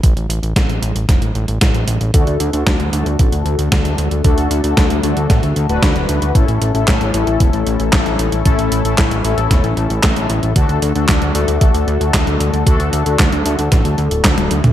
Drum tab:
HH |xxxxxxxxxxxxxxxx|xxxxxxxxxxxxxxxx|xxxxxxxxxxxxxxxx|xxxxxxxxxxxxxxxx|
CP |----------------|----------------|----------------|----x-------x---|
SD |----o---o---o---|----o-------o---|----o---o---o---|----o-------o---|
T1 |----------------|----------------|----------------|----------------|
T2 |----------------|----------------|----------------|----------------|
BD |o---o---o---o---|o---o---o---o---|o---o---o---o---|o---o---o---o---|

HH |xxxxxxxxxxxxxxxx|xxxxxxxxxxxxxxxx|xxxxxxxxxxxxxxxx|
CP |----x-------x---|----x-------x---|----x-------x---|
SD |----o---o---o---|----o-------o---|----o---o---o---|
T1 |----------------|----------------|------------oo--|
T2 |----------------|----------------|---------------o|
BD |o---o---o---o---|o---o---o---o---|o---o---o---o---|